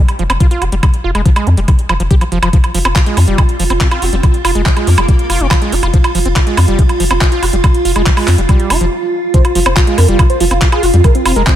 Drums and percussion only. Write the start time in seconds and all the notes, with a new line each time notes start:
0.08 closed hi-hat, high woodblock
0.19 closed hi-hat
0.30 closed hi-hat, high woodblock
0.40 kick, closed hi-hat
0.51 closed hi-hat
0.62 closed hi-hat, high woodblock
0.72 closed hi-hat
0.83 kick, closed hi-hat, high woodblock
0.94 closed hi-hat
1.15 closed hi-hat, high woodblock
1.26 kick, closed hi-hat
1.36 closed hi-hat, high woodblock
1.47 closed hi-hat
1.57 closed hi-hat
1.68 kick, closed hi-hat, high woodblock
1.79 closed hi-hat
1.89 closed hi-hat, high woodblock
2.00 closed hi-hat
2.11 kick, closed hi-hat
2.21 closed hi-hat, high woodblock
2.32 closed hi-hat
2.43 closed hi-hat, high woodblock
2.53 kick, closed hi-hat
2.64 closed hi-hat, high woodblock
2.74 open hi-hat
2.85 closed hi-hat, high woodblock
2.96 kick, clap, closed hi-hat
3.06 closed hi-hat
3.17 open hi-hat, high woodblock
3.38 kick, closed hi-hat, high woodblock
3.49 closed hi-hat
3.60 open hi-hat
3.70 closed hi-hat, high woodblock
3.81 kick, clap, closed hi-hat
3.91 closed hi-hat, high woodblock
4.02 open hi-hat
4.13 closed hi-hat
4.23 kick, closed hi-hat, high woodblock
4.34 closed hi-hat
4.45 open hi-hat, high woodblock
4.55 closed hi-hat
4.66 kick, clap, closed hi-hat
4.77 closed hi-hat, high woodblock
4.87 open hi-hat
4.98 closed hi-hat, high woodblock
5.08 kick, closed hi-hat
5.19 closed hi-hat
5.30 open hi-hat, high woodblock
5.40 closed hi-hat
5.51 kick, clap, closed hi-hat, high woodblock
5.62 closed hi-hat
5.72 open hi-hat
5.83 closed hi-hat, high woodblock
5.94 kick, closed hi-hat
6.04 closed hi-hat, high woodblock
6.15 open hi-hat
6.25 closed hi-hat
6.36 kick, clap, closed hi-hat, high woodblock
6.47 closed hi-hat
6.57 open hi-hat, high woodblock
6.68 closed hi-hat
6.79 kick, closed hi-hat
6.89 closed hi-hat, high woodblock
7.00 open hi-hat
7.11 high woodblock
7.21 kick, clap, closed hi-hat
7.32 closed hi-hat
7.43 open hi-hat, high woodblock
7.53 closed hi-hat
7.64 kick, closed hi-hat, high woodblock
7.74 closed hi-hat
7.85 open hi-hat
7.96 closed hi-hat, high woodblock
8.06 kick, clap, closed hi-hat
8.17 open hi-hat, high woodblock
8.28 clap, open hi-hat
8.38 closed hi-hat
8.49 kick, closed hi-hat, high woodblock
8.60 closed hi-hat
8.70 open hi-hat, high woodblock
8.81 closed hi-hat
9.34 kick, closed hi-hat
9.45 closed hi-hat, high woodblock
9.55 open hi-hat
9.66 closed hi-hat, high woodblock
9.77 kick, clap, closed hi-hat
9.87 closed hi-hat
9.98 open hi-hat, high woodblock
10.09 closed hi-hat
10.19 kick, closed hi-hat, high woodblock
10.30 closed hi-hat
10.40 open hi-hat
10.51 closed hi-hat, high woodblock
10.62 kick, clap, closed hi-hat
10.72 closed hi-hat, high woodblock
10.83 open hi-hat
10.94 closed hi-hat
11.04 kick, closed hi-hat, high woodblock
11.15 closed hi-hat
11.26 open hi-hat, high woodblock
11.36 closed hi-hat
11.47 kick, clap, closed hi-hat